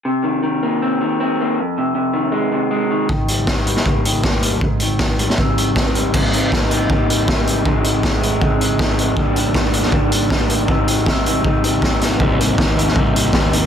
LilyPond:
<<
  \new Staff \with { instrumentName = "Clean electric guitar" } { \clef bass \time 4/4 \key c \minor \tempo 4 = 158 c8 ees8 ees8 bes8 c'8 ees8 c'8 bes8 | f,8 c8 c8 ees8 aes8 c8 aes8 ees8 | ees8 g8 ees8 g8 bes8 ees8 bes8 g8 | aes,8 ees8 ees8 g8 c'8 ees8 c'8 g8 |
<c g bes ees'>8 <g bes ees'>8 <c g bes ees'>8 <c g bes ees'>8 <c g bes ees'>8 <g bes ees'>8 <c g bes ees'>8 <g bes ees'>8 | <f, c ees aes ees'>8 <ees aes ees'>8 <c ees aes ees'>8 <f, c ees aes ees'>8 <c ees aes ees'>8 <ees aes ees'>8 <f, c ees aes ees'>8 <ees aes ees'>8 | <ees g bes d'>8 <g bes d'>8 <ees g bes d'>8 <ees g bes d'>8 <ees g bes d'>8 <g bes d'>8 <ees g bes d'>8 <g bes d'>8 | <aes, ees g c' ees'>8 <g c' ees'>8 <ees g c' ees'>8 <aes, ees g c' ees'>8 <ees g c' ees'>8 <g c' ees'>8 <aes, ees g c' ees'>8 <g c' ees'>8 |
<c g bes ees'>8 <g bes ees'>8 <c g bes ees'>8 <c g bes ees'>8 <c g bes ees'>8 <g bes ees'>8 <c g bes ees'>8 <g bes ees'>8 | }
  \new Staff \with { instrumentName = "Picked electric bass" } { \clef bass \time 4/4 \key c \minor r1 | r1 | r1 | r1 |
r1 | r1 | r1 | r1 |
c,4 ees,4 c,8 c,8 ees,4 | }
  \new DrumStaff \with { instrumentName = "Drums" } \drummode { \time 4/4 r4 r4 r4 r4 | r4 r4 r4 r4 | bd8 hh8 <bd sn>8 hh16 sn16 bd8 hh8 <bd sn>8 hh8 | bd8 hh8 <bd sn>8 hh16 sn16 bd8 hh8 <bd sn>8 hh8 |
<cymc bd>8 hh8 <bd sn>8 hh8 bd8 hh8 <bd sn>8 hh8 | bd8 hh8 <bd sn>8 hh8 bd8 hh8 <bd sn>8 hh8 | bd8 hh8 <bd sn>8 hh16 sn16 bd8 hh8 <bd sn>8 hh8 | bd8 hh8 <bd sn>8 hh8 bd8 hh8 <bd sn>8 <hh sn>8 |
bd8 hh8 <bd sn>8 hh16 sn16 bd8 hh8 <bd sn>8 hh8 | }
>>